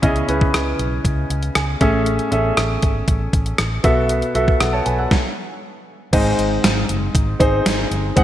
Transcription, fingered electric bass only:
0.03 0.21 C#2 loud
0.28 0.47 C#2 medium
0.54 0.72 C#2 loud
0.79 0.98 B1 medium
1.05 1.23 C#2 loud
1.30 1.48 C#2 medium
1.55 1.74 C#2 medium
1.81 2.17 A1 medium
2.32 2.50 A1 medium
2.57 2.75 A1 medium
2.83 3.01 G#1 medium
3.08 3.26 A1 loud
3.33 3.52 A1 loud
3.59 3.77 A1 medium
3.84 4.21 B1 medium
4.35 4.53 B1 medium
4.61 4.79 B1 medium
4.86 5.04 B1 medium
6.13 6.31 G#1 loud
6.38 6.57 G#1 loud
6.64 6.82 G#1 loud
6.89 7.08 F#1 medium
7.15 7.33 G#1 loud
7.40 7.58 G#1 medium
7.66 7.84 G#1 loud
7.91 8.09 G1 medium
8.17 8.24 G#1 loud

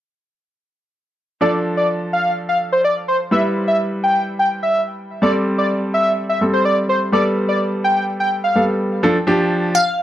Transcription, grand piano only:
1.41 3.28 F3 medium
1.41 3.28 D4 medium
1.41 3.28 A4 medium
3.31 5.18 G3 medium
3.31 5.18 E4 medium
3.31 5.19 B4 medium
5.22 6.39 G3 medium
5.22 6.39 C4 medium
5.22 6.39 A4 medium
6.41 7.11 G3 soft
6.41 7.13 C4 soft
6.41 7.12 A4 medium
7.12 8.53 G3 medium
7.12 8.53 B3 medium
7.12 8.53 A4 medium
8.55 9.03 G3 soft
8.55 9.03 B3 soft
8.55 9.02 A4 medium
9.03 9.15 F3 medium
9.03 9.15 D4 medium
9.03 9.15 A4 medium
9.27 9.75 F3 medium
9.27 9.75 D4 medium
9.27 9.75 G4 loud

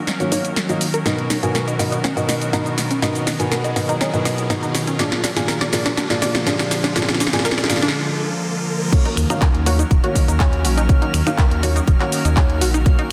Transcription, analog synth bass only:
0.45 0.82 D#2 loud
1.68 1.97 B1 loud
2.41 2.79 B1 loud
3.27 3.35 B1 loud
3.64 3.94 B1 loud
4.38 4.76 B1 loud
5.24 5.32 A#1 loud
5.61 5.90 A#1 loud
5.97 6.05 A#2 loud
6.35 6.73 A#1 loud
7.20 7.28 A#1 loud
9.17 9.25 D#2 medium
9.54 9.84 D#2 loud
9.91 9.99 D#1 loud
10.28 10.66 D#2 loud
10.65 10.94 A#1 medium
11.14 11.22 D#2 loud
11.51 11.80 D#2 loud
11.88 11.96 D#1 loud
12.25 12.63 D#2 loud
12.61 12.91 A#1 medium

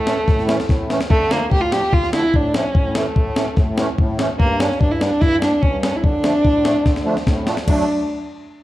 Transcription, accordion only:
0.00 0.17 A2 medium
0.06 0.16 E3 medium
0.06 0.16 A3 medium
0.06 0.17 C#4 medium
0.27 0.58 A2 medium
0.45 0.57 E3 medium
0.45 0.57 A3 medium
0.45 0.58 C#4 loud
0.67 0.98 A2 medium
0.88 0.99 E3 medium
0.88 0.99 A3 medium
0.88 0.99 C#4 medium
1.10 1.40 D3 medium
1.29 1.40 F3 medium
1.29 1.40 A3 medium
1.29 1.41 D4 medium
1.50 1.81 A2 medium
1.71 1.82 F3 medium
1.71 1.82 A3 medium
1.71 1.82 D4 medium
1.93 2.23 D3 medium
2.13 2.23 F3 medium
2.13 2.23 A3 medium
2.13 2.24 D4 medium
2.34 2.64 A2 medium
2.55 2.65 F3 medium
2.55 2.65 A3 medium
2.55 2.65 D4 medium
2.77 3.07 A2 medium
2.96 3.06 E3 medium
2.96 3.06 A3 medium
2.96 3.06 C#4 medium
3.17 3.47 A2 medium
3.36 3.46 E3 medium
3.36 3.46 A3 medium
3.36 3.47 C#4 medium
3.56 3.87 A2 medium
3.77 3.87 E3 medium
3.77 3.88 A3 medium
3.77 3.88 C#4 loud
3.98 4.29 A2 medium
4.17 4.28 E3 medium
4.17 4.29 A3 medium
4.17 4.29 C#4 loud
4.38 4.69 G2 medium
4.59 4.69 G3 medium
4.59 4.70 A#3 medium
4.59 4.70 D4 loud
4.80 5.10 G2 medium
5.00 5.10 G3 medium
5.00 5.11 A#3 medium
5.00 5.11 D4 medium
5.21 5.52 G2 medium
5.41 5.52 G3 medium
5.41 5.52 A#3 medium
5.41 5.52 D4 medium
5.63 5.93 G2 medium
5.81 5.92 G3 medium
5.81 5.93 A#3 medium
5.81 5.93 D4 medium
6.03 6.34 D3 medium
6.22 6.33 F3 medium
6.22 6.34 A3 medium
6.22 6.34 D4 medium
6.44 6.74 A2 medium
6.64 6.74 F3 medium
6.64 6.75 A3 medium
6.64 6.75 D4 medium
6.85 7.16 D3 medium
7.04 7.15 F3 medium
7.04 7.15 A3 medium
7.04 7.16 D4 loud
7.25 7.56 A2 medium
7.45 7.56 F3 medium
7.45 7.56 A3 medium
7.45 7.57 D4 medium
7.66 7.86 F#3 medium
7.66 7.86 A3 medium
7.66 7.86 D4 medium

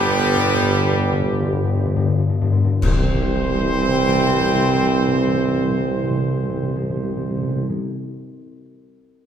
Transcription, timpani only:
0.08 0.16 G2 medium
0.17 0.25 G2 medium
0.26 0.35 G2 medium
0.36 0.43 G2 medium
0.45 0.52 G2 medium
0.54 0.62 G2 medium
0.63 0.72 G2 medium
0.73 0.81 G2 medium
0.83 0.91 G2 medium
0.92 1.01 G2 medium
1.02 1.11 G2 medium
1.12 1.21 G2 loud
1.23 1.31 G2 loud
1.33 1.42 G2 loud
1.43 1.52 G2 loud
1.53 1.63 G2 loud
1.64 1.74 G2 loud
1.75 1.85 G2 loud
1.86 1.95 G2 loud
1.96 2.06 G2 loud
2.07 2.17 G2 loud
2.19 2.29 G2 loud
2.30 2.40 G2 loud
2.42 2.52 G2 loud
2.53 2.63 G2 loud
2.65 2.75 G2 loud
2.82 2.89 C3 medium
2.89 2.95 C3 loud
2.95 3.02 C3 medium
3.02 3.08 C3 loud
3.08 3.15 C3 medium
3.15 3.21 C3 medium
3.22 3.28 C3 medium
3.28 3.35 C3 medium
3.35 3.42 C3 medium
3.42 3.48 C3 medium
3.48 3.55 C3 medium
3.55 3.61 C3 medium
3.62 3.69 C3 medium
3.69 3.75 C3 medium
3.75 3.82 C3 medium
3.82 3.88 C3 medium
3.88 3.95 C3 loud
3.95 4.02 C3 medium
4.02 4.08 C3 loud
4.08 4.15 C3 medium
4.15 4.22 C3 medium
4.22 4.28 C3 medium
4.28 4.35 C3 loud
4.35 4.41 C3 medium
4.41 4.48 C3 loud
4.48 4.54 C3 medium
4.54 4.61 C3 medium
4.61 4.67 C3 medium
4.68 4.75 C3 medium
4.75 4.81 C3 medium
4.81 4.88 C3 loud
4.88 4.94 C3 medium
5.01 5.07 C3 medium
5.08 5.14 C3 loud
5.14 5.21 C3 medium
5.21 5.27 C3 medium
5.28 5.34 C3 medium
5.34 5.40 C3 medium
5.40 5.47 C3 medium
5.47 5.53 C3 medium
5.53 5.59 C3 medium
5.59 5.65 C3 loud
5.65 5.72 C3 medium
5.72 5.78 C3 medium
5.78 5.84 C3 medium
5.84 5.91 C3 medium
5.91 5.97 C3 medium
5.97 6.04 C3 medium
6.04 6.11 C3 medium
6.11 6.17 C3 loud
6.17 6.24 C3 medium
6.24 6.30 C3 medium
6.30 6.37 C3 medium
6.37 6.43 C3 loud
6.43 6.50 C3 medium
6.50 6.56 C3 loud
6.56 6.63 C3 medium
6.63 6.69 C3 medium
6.69 6.76 C3 medium
6.76 6.83 C3 loud
6.83 6.90 C3 medium
6.90 6.97 C3 medium
6.97 7.03 C3 medium
7.03 7.10 C3 medium
7.10 7.17 C3 medium
7.17 7.23 C3 medium
7.23 7.30 C3 medium
7.30 7.37 C3 medium
7.37 7.43 C3 medium
7.43 7.49 C3 medium
7.49 7.56 C3 medium
7.56 7.62 C3 medium
7.63 7.70 C3 medium
7.70 7.77 C3 loud

